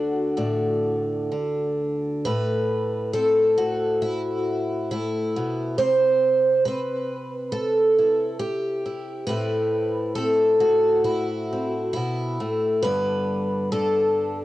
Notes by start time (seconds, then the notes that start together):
Already playing: D2 D3 D4 F#4
0.37 A2 D4
1.32 D3
2.25 A2 B4
3.13 C4 A4
3.58 F#4
4.02 E4
4.91 A2 E4
5.36 B2
5.78 C3 C5
6.65 C4 B4
7.52 A4
7.98 E4
8.39 G4
8.85 E4
9.27 A2 C4 E4 B4
10.15 C4 A4
10.60 F#4
11.04 E4
11.53 C4
11.93 B2 E4
12.40 A2
12.83 G2 D3 B3 B4
13.72 D3 A4